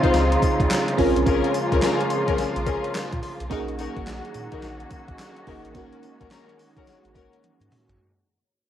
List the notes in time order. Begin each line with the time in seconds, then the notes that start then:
Already playing: C#3 G#3 C4 D#4 F4 G#4
0.03 D#4 F4 C5, kick, closed hi-hat
0.14 C#2, snare, closed hi-hat, tambourine
0.32 closed hi-hat
0.42 kick, closed hi-hat, tambourine
0.60 C#2, kick, closed hi-hat
0.70 snare, clap, closed hi-hat, tambourine
0.88 closed hi-hat
0.97 A#1 F3 G#3 A#3 C4 C#4 F4 G#4 A#4, kick, open hi-hat
1.16 B1, closed hi-hat
1.26 A#1 C#4 G#4 A#4, kick, closed hi-hat, tambourine
1.44 closed hi-hat
1.54 closed hi-hat, tambourine
1.72 C#2 C#4 G#4 A#4, kick, closed hi-hat
1.82 C#4 G#4 A#4, snare, clap, closed hi-hat, tambourine
2.01 closed hi-hat
2.10 closed hi-hat, tambourine
2.28 C#4 G#4 A#4, kick, closed hi-hat
2.38 A#1, snare, closed hi-hat, tambourine
2.56 A#1, closed hi-hat
2.66 C#4 G#4 A#4, kick, closed hi-hat, tambourine
2.84 closed hi-hat
2.95 snare, clap, closed hi-hat, tambourine
3.13 A#2, kick, closed hi-hat
3.23 open hi-hat
3.40 B1, closed hi-hat
3.50 A#1 D#3 F#3 A#3 C#4 D#4 F#4 G#4 A#4, kick, closed hi-hat, tambourine
3.68 closed hi-hat
3.79 D#4 F#4 A#4, closed hi-hat, tambourine
3.96 G#1, kick, closed hi-hat
4.07 A#1, snare, clap, closed hi-hat, tambourine
4.25 closed hi-hat
4.34 A#2, closed hi-hat, tambourine
4.52 D#4 F#4 A#4, kick, closed hi-hat
4.62 A#1, snare, closed hi-hat, tambourine
4.80 closed hi-hat
4.91 kick, closed hi-hat, tambourine
5.08 A#1, kick, closed hi-hat
5.19 snare, clap, closed hi-hat, tambourine
5.37 closed hi-hat
5.47 F#1 A#3 C#4 D#4 F#4 G#4 A#4, kick, open hi-hat
5.65 A1, closed hi-hat
5.74 G#1 G#3 A#3 C#4 D#4 F#4 A#4, kick, closed hi-hat, tambourine
5.93 closed hi-hat
6.03 closed hi-hat, tambourine
6.20 A#1 C#4 F#4 A#4, kick, closed hi-hat
6.31 C#4 F#4 A#4, snare, clap, closed hi-hat, tambourine
6.49 closed hi-hat
6.59 open hi-hat, tambourine
6.77 C#4 F#4 A#4, kick, closed hi-hat
6.87 G#1, snare, closed hi-hat, tambourine
7.05 G#1, closed hi-hat
7.15 C#4 F#4 A#4, kick, closed hi-hat, tambourine
7.33 closed hi-hat
7.44 closed hi-hat, high tom
7.61 G#2, closed hi-hat
7.72 mid tom, open hi-hat
7.89 A1, closed hi-hat, floor tom